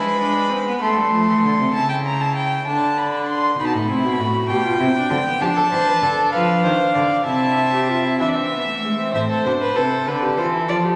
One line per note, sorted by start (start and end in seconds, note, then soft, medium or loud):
0.00 0.80 G#3 medium
0.00 0.19 E4 medium
0.00 0.80 B4 medium
0.00 0.80 B5 loud
0.20 0.51 D4 medium
0.50 0.66 C4 medium
0.67 0.81 B3 medium
0.82 0.98 A3 medium
0.82 1.73 A3 loud
0.82 1.72 A4 medium
0.82 1.73 C6 medium
0.96 1.11 G3 medium
1.12 1.27 F3 medium
1.27 1.34 E3 medium
1.43 1.58 D3 medium
1.59 1.74 C3 medium
1.74 2.63 C#3 medium
1.74 2.63 E4 medium
1.74 1.88 A5 medium
1.89 1.95 G5 medium
2.05 2.22 A#5 medium
2.21 2.35 A5 medium
2.36 2.66 G5 medium
2.67 3.57 D3 medium
2.67 3.57 D4 medium
2.67 2.99 A5 medium
2.98 3.27 B5 medium
3.28 3.58 C6 medium
3.58 3.75 B2 medium
3.58 3.88 D#4 medium
3.58 3.67 B5 medium
3.66 3.75 A5 medium
3.73 3.90 A2 medium
3.73 4.48 B5 medium
3.89 4.05 C3 medium
3.89 4.22 E4 medium
4.04 4.20 B2 medium
4.19 4.50 A2 medium
4.19 4.52 F#4 medium
4.49 4.79 B2 medium
4.49 4.64 G4 medium
4.49 5.42 G5 medium
4.65 4.81 F4 medium
4.79 4.87 C3 loud
4.79 4.95 E4 medium
4.96 5.12 D4 medium
5.10 5.18 D3 medium
5.10 5.25 C4 medium
5.26 5.41 B3 medium
5.41 5.49 F3 medium
5.41 7.23 D4 medium
5.41 5.48 G4 medium
5.41 6.31 A5 loud
5.56 5.62 A4 medium
5.72 5.80 E3 medium
5.72 5.89 C5 medium
5.87 6.05 B4 medium
6.02 6.10 D3 medium
6.02 6.33 A4 loud
6.32 6.63 F3 medium
6.32 6.63 B4 loud
6.32 7.24 F5 medium
6.64 6.72 D#3 medium
6.64 6.94 C5 medium
6.95 7.03 D3 medium
6.95 7.26 D5 medium
7.26 8.21 C3 medium
7.26 7.73 E4 medium
7.26 8.19 E5 medium
7.26 8.19 A5 medium
7.74 7.90 G4 medium
7.89 8.06 F4 medium
8.04 8.22 E4 medium
8.20 9.14 E3 medium
8.20 8.37 D4 medium
8.20 9.13 E5 medium
8.20 8.30 E5 medium
8.29 8.36 D5 medium
8.35 8.53 C4 medium
8.35 9.14 E5 medium
8.51 8.67 B3 medium
8.68 8.86 A3 medium
8.85 8.99 G#3 medium
8.99 9.14 C4 medium
9.14 9.22 A2 medium
9.14 9.48 C4 medium
9.14 10.08 C5 medium
9.14 9.21 E5 medium
9.30 9.45 A4 medium
9.45 9.53 B2 medium
9.45 9.76 D4 medium
9.45 9.52 C5 medium
9.61 9.77 B4 loud
9.75 10.08 C3 medium
9.75 9.85 E4 medium
9.75 10.09 A4 medium
10.07 10.37 D3 medium
10.07 10.24 D4 medium
10.07 10.96 A4 medium
10.07 10.37 B4 medium
10.23 10.40 G4 medium
10.37 10.70 E3 medium
10.37 10.53 F4 medium
10.37 10.45 C5 medium
10.54 10.60 E4 medium
10.68 10.96 F3 medium
10.68 10.86 F4 medium
10.68 10.76 D5 medium
10.85 10.96 G4 medium